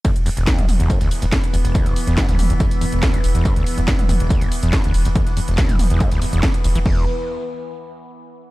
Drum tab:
CC |----------------|----------------|----------------|----------------|
RD |xxxxxxxxxxxxxxxx|xxxxxxxxxxxxxxxx|xxxxxxxxxxxxxxxx|xxxxxxxxxxxxxxxx|
HH |xxoxxxoxxxoxxxox|xxoxxxoxxxoxxxox|xxoxxxoxxxoxxxox|xxoxxxoxxxoxxxox|
TB |x-x-x-x-x-x-x-x-|x-x-x-x-x-x-x-x-|x-x-x-x-x-x-x-x-|x-x-x-x-x-x-x-x-|
SD |---ooo------o---|-o-oo-o-----o---|---ooo------o---|-o-oo-o-----o---|
T2 |-----oo---------|-----oo---------|-----oo---------|-----oo---------|
BD |o---o---o---o---|o---o---o---o---|o---o---o---o---|o---o---o---o---|

CC |x---------------|
RD |----------------|
HH |----------------|
TB |----------------|
SD |----------------|
T2 |----------------|
BD |o---------------|